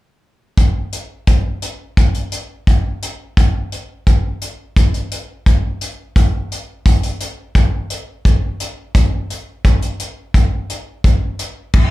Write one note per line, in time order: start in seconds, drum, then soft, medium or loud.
0.57 kick medium
0.57 closed hi-hat medium
0.92 closed hi-hat soft
1.27 kick medium
1.27 closed hi-hat medium
1.62 closed hi-hat soft
1.97 kick medium
1.97 closed hi-hat medium
2.14 closed hi-hat soft
2.32 closed hi-hat medium
2.67 kick medium
2.67 closed hi-hat medium
3.02 closed hi-hat medium
3.37 kick medium
3.37 closed hi-hat medium
3.72 closed hi-hat soft
4.07 kick medium
4.07 closed hi-hat medium
4.41 closed hi-hat soft
4.76 kick medium
4.76 closed hi-hat medium
4.94 closed hi-hat soft
5.11 closed hi-hat medium
5.46 kick medium
5.46 closed hi-hat medium
5.81 closed hi-hat medium
6.16 kick medium
6.16 closed hi-hat medium
6.52 closed hi-hat soft
6.86 kick medium
6.86 closed hi-hat medium
7.03 closed hi-hat soft
7.20 closed hi-hat medium
7.55 kick medium
7.55 closed hi-hat medium
7.90 closed hi-hat medium
8.25 kick medium
8.25 closed hi-hat medium
8.60 closed hi-hat medium
8.95 kick medium
8.95 closed hi-hat medium
9.30 closed hi-hat soft
9.65 kick medium
9.65 closed hi-hat medium
9.82 closed hi-hat soft
10.00 closed hi-hat medium
10.34 kick medium
10.34 closed hi-hat medium
10.70 closed hi-hat medium
11.04 kick medium
11.04 closed hi-hat medium
11.39 closed hi-hat medium
11.73 kick loud
11.73 crash medium